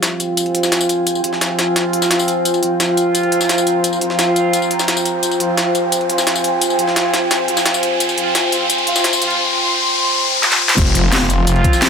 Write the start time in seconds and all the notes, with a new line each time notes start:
Already playing: F3 C4 F4 C5 G5 G#5, riser
0.03 snare, closed hi-hat, tambourine
0.20 closed hi-hat, tambourine
0.37 closed hi-hat, tambourine
0.46 closed hi-hat
0.55 closed hi-hat
0.63 snare, tambourine
0.72 snare, closed hi-hat, tambourine
0.81 tambourine
0.89 closed hi-hat, tambourine
1.07 closed hi-hat, tambourine
1.15 tambourine
1.24 F3 C4 F4, closed hi-hat
1.33 snare
1.41 snare, closed hi-hat, tambourine
1.59 snare, closed hi-hat, tambourine
1.76 snare, closed hi-hat, tambourine
1.93 closed hi-hat
2.02 snare, tambourine
2.11 snare, closed hi-hat, tambourine
2.19 tambourine
2.28 closed hi-hat, tambourine
2.45 A#5, closed hi-hat, tambourine
2.54 closed hi-hat, tambourine
2.63 F3 C4 F4, closed hi-hat
2.80 snare, closed hi-hat, tambourine
2.97 closed hi-hat, tambourine
3.15 closed hi-hat, tambourine
3.23 closed hi-hat
3.32 closed hi-hat
3.41 snare, tambourine
3.49 snare, closed hi-hat, tambourine
3.58 tambourine
3.67 closed hi-hat, tambourine
3.84 closed hi-hat, tambourine
3.93 tambourine
4.01 F3 C4 F4, closed hi-hat
4.10 snare
4.19 snare, closed hi-hat, tambourine
4.36 closed hi-hat, tambourine
4.53 closed hi-hat, tambourine
4.62 tambourine
4.71 closed hi-hat
4.79 snare, tambourine
4.88 snare, closed hi-hat, tambourine
4.97 tambourine
5.05 closed hi-hat, tambourine
5.23 G#5, closed hi-hat, tambourine
5.31 closed hi-hat, tambourine
5.40 F3 C4 F4, closed hi-hat
5.57 snare, closed hi-hat, tambourine
5.75 closed hi-hat, tambourine
5.92 closed hi-hat, tambourine
6.01 closed hi-hat
6.09 F3 C4 F4, closed hi-hat
6.18 snare, tambourine
6.27 snare, closed hi-hat, tambourine
6.35 tambourine
6.44 closed hi-hat, tambourine
6.61 closed hi-hat, tambourine
6.70 tambourine
6.79 F3 C4 F4, closed hi-hat
6.88 snare
6.96 snare, closed hi-hat, tambourine
7.14 snare, closed hi-hat, tambourine
7.31 snare, closed hi-hat, tambourine
7.48 F3 C4 F4, closed hi-hat
7.57 snare, tambourine
7.66 snare, closed hi-hat, tambourine
7.74 tambourine
7.83 closed hi-hat, tambourine
8.00 C6, closed hi-hat, tambourine
8.09 closed hi-hat, tambourine
8.18 F3 C4 F4, closed hi-hat
8.35 snare, closed hi-hat, tambourine
8.52 F3 C4 F4, closed hi-hat, tambourine
8.70 closed hi-hat, tambourine
8.78 closed hi-hat
8.87 F3 C4 F4, closed hi-hat
8.96 snare, tambourine
9.04 snare, closed hi-hat, tambourine
9.13 tambourine
9.22 F3 C4 F4, closed hi-hat, tambourine
9.30 closed hi-hat
10.43 snare
10.52 snare
10.69 snare
10.78 F1 F4 C5 G#5 C6, kick, closed hi-hat, crash, tambourine, impact
10.86 closed hi-hat, tambourine
10.95 F3 C4 F4, closed hi-hat
11.12 snare, closed hi-hat, tambourine
11.30 closed hi-hat, tambourine
11.47 closed hi-hat, tambourine
11.56 closed hi-hat
11.64 kick, closed hi-hat
11.73 snare, tambourine
11.82 snare, closed hi-hat, tambourine